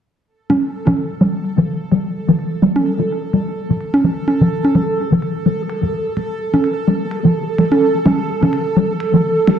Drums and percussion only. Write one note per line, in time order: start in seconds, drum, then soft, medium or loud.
0.50 closed hi-hat medium
0.50 high conga medium
0.87 high conga medium
0.97 closed hi-hat medium
1.44 closed hi-hat medium
1.92 closed hi-hat medium
2.39 closed hi-hat medium
2.76 high conga medium
2.86 closed hi-hat medium
3.33 closed hi-hat medium
3.81 closed hi-hat medium
3.94 high conga medium
4.28 closed hi-hat medium
4.28 high conga medium
4.65 high conga medium
4.75 closed hi-hat medium
5.22 closed hi-hat medium
5.70 closed hi-hat medium
6.17 closed hi-hat medium
6.54 high conga medium
6.64 closed hi-hat medium
7.11 closed hi-hat medium
7.58 closed hi-hat medium
7.72 high conga medium
8.06 closed hi-hat medium
8.06 high conga medium
8.43 high conga soft
8.53 closed hi-hat medium
9.00 closed hi-hat medium
9.47 closed hi-hat medium